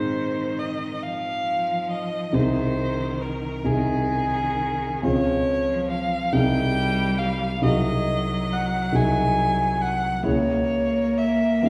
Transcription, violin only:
0, 0, Header, 1, 2, 480
1, 0, Start_track
1, 0, Key_signature, -4, "major"
1, 0, Tempo, 877193
1, 1286, Time_signature, 6, 3, 24, 8
1, 1765, Tempo, 911854
1, 2725, Tempo, 868307
1, 5605, Tempo, 927357
1, 6346, End_track
2, 0, Start_track
2, 0, Title_t, "Violin"
2, 0, Program_c, 0, 40
2, 0, Note_on_c, 0, 72, 64
2, 322, Note_on_c, 0, 75, 54
2, 330, Note_off_c, 0, 72, 0
2, 562, Note_on_c, 0, 77, 67
2, 570, Note_off_c, 0, 75, 0
2, 1041, Note_off_c, 0, 77, 0
2, 1044, Note_on_c, 0, 75, 62
2, 1282, Note_on_c, 0, 72, 67
2, 1290, Note_off_c, 0, 75, 0
2, 1757, Note_on_c, 0, 70, 56
2, 1765, Note_off_c, 0, 72, 0
2, 1989, Note_on_c, 0, 68, 70
2, 1997, Note_off_c, 0, 70, 0
2, 2719, Note_off_c, 0, 68, 0
2, 2722, Note_on_c, 0, 73, 79
2, 3193, Note_off_c, 0, 73, 0
2, 3202, Note_on_c, 0, 77, 70
2, 3434, Note_on_c, 0, 79, 82
2, 3442, Note_off_c, 0, 77, 0
2, 3905, Note_on_c, 0, 77, 69
2, 3914, Note_off_c, 0, 79, 0
2, 4153, Note_off_c, 0, 77, 0
2, 4158, Note_on_c, 0, 75, 80
2, 4650, Note_on_c, 0, 78, 67
2, 4658, Note_off_c, 0, 75, 0
2, 4885, Note_on_c, 0, 80, 76
2, 4893, Note_off_c, 0, 78, 0
2, 5358, Note_on_c, 0, 78, 73
2, 5367, Note_off_c, 0, 80, 0
2, 5601, Note_off_c, 0, 78, 0
2, 5604, Note_on_c, 0, 73, 78
2, 6081, Note_on_c, 0, 76, 66
2, 6089, Note_off_c, 0, 73, 0
2, 6327, Note_on_c, 0, 77, 73
2, 6335, Note_off_c, 0, 76, 0
2, 6346, Note_off_c, 0, 77, 0
2, 6346, End_track
0, 0, End_of_file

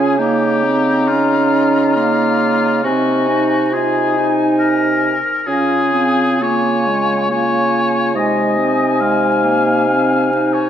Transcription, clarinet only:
0, 0, Header, 1, 2, 480
1, 0, Start_track
1, 0, Tempo, 881057
1, 101, Time_signature, 3, 2, 24, 8
1, 2980, Tempo, 940439
1, 3460, Tempo, 887574
1, 3940, Tempo, 864553
1, 5827, End_track
2, 0, Start_track
2, 0, Title_t, "Clarinet"
2, 0, Program_c, 0, 71
2, 0, Note_on_c, 0, 61, 81
2, 96, Note_off_c, 0, 61, 0
2, 103, Note_on_c, 0, 58, 73
2, 344, Note_on_c, 0, 60, 79
2, 352, Note_off_c, 0, 58, 0
2, 591, Note_on_c, 0, 61, 87
2, 599, Note_off_c, 0, 60, 0
2, 1069, Note_on_c, 0, 58, 75
2, 1077, Note_off_c, 0, 61, 0
2, 1542, Note_off_c, 0, 58, 0
2, 1545, Note_on_c, 0, 60, 77
2, 1789, Note_on_c, 0, 63, 76
2, 1797, Note_off_c, 0, 60, 0
2, 2030, Note_on_c, 0, 65, 76
2, 2038, Note_off_c, 0, 63, 0
2, 2268, Note_on_c, 0, 63, 85
2, 2276, Note_off_c, 0, 65, 0
2, 2831, Note_off_c, 0, 63, 0
2, 2980, Note_on_c, 0, 61, 72
2, 3203, Note_off_c, 0, 61, 0
2, 3218, Note_on_c, 0, 60, 78
2, 3460, Note_on_c, 0, 58, 77
2, 3469, Note_off_c, 0, 60, 0
2, 3708, Note_on_c, 0, 56, 75
2, 3716, Note_off_c, 0, 58, 0
2, 3939, Note_on_c, 0, 58, 71
2, 3947, Note_off_c, 0, 56, 0
2, 4408, Note_off_c, 0, 58, 0
2, 4412, Note_on_c, 0, 56, 69
2, 4649, Note_on_c, 0, 60, 68
2, 4658, Note_off_c, 0, 56, 0
2, 4892, Note_on_c, 0, 56, 70
2, 4901, Note_off_c, 0, 60, 0
2, 5132, Note_on_c, 0, 58, 63
2, 5140, Note_off_c, 0, 56, 0
2, 5372, Note_on_c, 0, 60, 65
2, 5380, Note_off_c, 0, 58, 0
2, 5619, Note_on_c, 0, 63, 70
2, 5628, Note_off_c, 0, 60, 0
2, 5827, Note_off_c, 0, 63, 0
2, 5827, End_track
0, 0, End_of_file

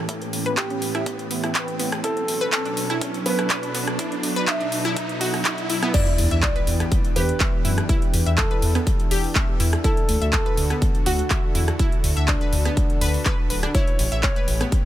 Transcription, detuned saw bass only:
0, 0, Header, 1, 2, 480
1, 0, Start_track
1, 0, Tempo, 487805
1, 87, Time_signature, 4, 2, 24, 8
1, 14612, End_track
2, 0, Start_track
2, 0, Title_t, "Detuned saw bass"
2, 0, Program_c, 0, 39
2, 6087, Note_on_c, 0, 40, 99
2, 6164, Note_off_c, 0, 40, 0
2, 6213, Note_on_c, 0, 40, 92
2, 6354, Note_off_c, 0, 40, 0
2, 6567, Note_on_c, 0, 40, 104
2, 6718, Note_off_c, 0, 40, 0
2, 7046, Note_on_c, 0, 40, 91
2, 7198, Note_off_c, 0, 40, 0
2, 7526, Note_on_c, 0, 42, 87
2, 7677, Note_off_c, 0, 42, 0
2, 8006, Note_on_c, 0, 40, 85
2, 8083, Note_off_c, 0, 40, 0
2, 8133, Note_on_c, 0, 40, 85
2, 8274, Note_off_c, 0, 40, 0
2, 8486, Note_on_c, 0, 40, 94
2, 8637, Note_off_c, 0, 40, 0
2, 8966, Note_on_c, 0, 28, 91
2, 9117, Note_off_c, 0, 28, 0
2, 9446, Note_on_c, 0, 40, 96
2, 9597, Note_off_c, 0, 40, 0
2, 9926, Note_on_c, 0, 38, 102
2, 10003, Note_off_c, 0, 38, 0
2, 10052, Note_on_c, 0, 38, 96
2, 10194, Note_off_c, 0, 38, 0
2, 10405, Note_on_c, 0, 38, 101
2, 10557, Note_off_c, 0, 38, 0
2, 10886, Note_on_c, 0, 38, 86
2, 11037, Note_off_c, 0, 38, 0
2, 11365, Note_on_c, 0, 40, 89
2, 11517, Note_off_c, 0, 40, 0
2, 11846, Note_on_c, 0, 38, 83
2, 11923, Note_off_c, 0, 38, 0
2, 11973, Note_on_c, 0, 38, 82
2, 12114, Note_off_c, 0, 38, 0
2, 12326, Note_on_c, 0, 38, 93
2, 12478, Note_off_c, 0, 38, 0
2, 12807, Note_on_c, 0, 38, 93
2, 12958, Note_off_c, 0, 38, 0
2, 13286, Note_on_c, 0, 26, 96
2, 13438, Note_off_c, 0, 26, 0
2, 13766, Note_on_c, 0, 33, 101
2, 13843, Note_off_c, 0, 33, 0
2, 13892, Note_on_c, 0, 33, 93
2, 14034, Note_off_c, 0, 33, 0
2, 14246, Note_on_c, 0, 33, 105
2, 14397, Note_off_c, 0, 33, 0
2, 14612, End_track
0, 0, End_of_file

